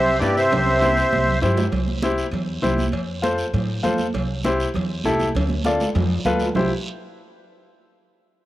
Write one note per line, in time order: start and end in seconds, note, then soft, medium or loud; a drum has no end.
0.00 0.15 C2 loud
0.00 0.18 C3 medium
0.00 0.19 C5 medium
0.00 0.18 E5 loud
0.19 0.34 G2 medium
0.19 0.46 G2 medium
0.19 0.42 E4 medium
0.19 0.43 G4 medium
0.19 0.36 G4 medium
0.19 0.43 B4 medium
0.19 0.36 D5 medium
0.19 cowbell medium
0.19 high conga medium
0.19 short guiro medium
0.35 1.38 C3 medium
0.35 1.39 C5 medium
0.35 1.38 E5 loud
0.35 short guiro medium
0.51 1.00 C2 loud
0.51 cowbell loud
0.51 high conga soft
0.51 low conga medium
0.51 high timbale medium
0.51 long guiro medium
0.82 1.03 E4 medium
0.82 1.03 G4 medium
0.82 1.03 C5 loud
0.82 cowbell medium
0.82 high conga medium
0.82 high timbale medium
0.82 short guiro medium
0.97 short guiro medium
1.13 1.37 C2 loud
1.13 cowbell medium
1.13 high conga medium
1.13 long guiro medium
1.28 low conga medium
1.42 1.67 G2 medium
1.42 1.63 E4 medium
1.42 1.63 G4 medium
1.42 1.64 C5 loud
1.42 cowbell medium
1.42 low conga medium
1.42 low timbale medium
1.42 short guiro medium
1.57 low conga medium
1.57 low timbale medium
1.57 short guiro medium
1.72 2.21 C2 medium
1.72 cowbell loud
1.72 high conga soft
1.72 low conga medium
1.72 long guiro medium
1.88 high conga medium
2.02 2.24 E4 medium
2.02 2.24 G4 medium
2.02 2.24 C5 medium
2.02 cowbell medium
2.02 high conga medium
2.02 short guiro medium
2.18 short guiro medium
2.31 2.56 E2 loud
2.31 cowbell medium
2.31 high conga soft
2.31 low conga medium
2.31 long guiro medium
2.62 2.87 C2 medium
2.62 2.84 E4 medium
2.62 2.84 G4 medium
2.62 2.84 C5 medium
2.62 cowbell medium
2.62 high conga medium
2.62 low conga medium
2.62 low timbale medium
2.62 short guiro medium
2.78 high conga medium
2.78 short guiro medium
2.92 3.41 F2 medium
2.92 cowbell loud
2.92 high conga soft
2.92 long guiro medium
3.22 3.44 F4 medium
3.22 3.44 A4 medium
3.22 3.45 C5 loud
3.22 cowbell medium
3.22 high conga medium
3.22 short guiro medium
3.38 short guiro medium
3.54 3.78 A2 loud
3.54 cowbell medium
3.54 high conga soft
3.54 low conga medium
3.54 long guiro medium
3.83 4.08 F2 medium
3.83 4.05 F4 medium
3.83 4.05 A4 medium
3.83 4.05 C5 medium
3.83 cowbell medium
3.83 high conga medium
3.83 low conga medium
3.83 low timbale medium
3.83 short guiro medium
3.98 high conga medium
3.98 short guiro medium
4.13 4.63 C2 loud
4.13 cowbell loud
4.13 high conga soft
4.13 low conga medium
4.13 long guiro medium
4.43 4.66 E4 medium
4.43 4.66 G4 medium
4.43 4.66 C5 loud
4.43 cowbell medium
4.43 high conga medium
4.43 short guiro medium
4.60 short guiro medium
4.74 4.99 E2 loud
4.74 cowbell medium
4.74 high conga soft
4.74 low conga medium
4.74 long guiro medium
5.04 5.29 C2 medium
5.04 5.26 E4 medium
5.04 5.27 G4 medium
5.04 5.26 A4 loud
5.04 cowbell medium
5.04 high conga medium
5.04 low timbale medium
5.04 short guiro medium
5.19 high conga medium
5.19 short guiro medium
5.35 5.84 D2 medium
5.35 cowbell loud
5.35 high conga soft
5.35 low conga medium
5.35 high timbale medium
5.35 long guiro medium
5.49 high conga medium
5.65 5.87 F4 medium
5.65 5.87 A4 medium
5.65 5.87 D5 medium
5.65 cowbell medium
5.65 high conga medium
5.65 high timbale medium
5.65 short guiro medium
5.80 low timbale medium
5.80 short guiro medium
5.95 6.20 F2 loud
5.95 cowbell medium
5.95 high conga soft
5.95 low conga medium
5.95 low timbale medium
5.95 long guiro medium
6.25 6.49 D2 medium
6.25 6.47 F4 medium
6.25 6.47 A4 medium
6.25 6.47 B4 loud
6.25 cowbell medium
6.25 high conga medium
6.25 low conga medium
6.25 low timbale medium
6.25 short guiro medium
6.39 low timbale loud
6.39 short guiro medium
6.55 6.70 C2 medium
6.55 6.70 E4 medium
6.55 6.70 G4 medium
6.55 6.70 C5 medium
6.55 low conga loud
6.55 low timbale loud
6.55 long guiro loud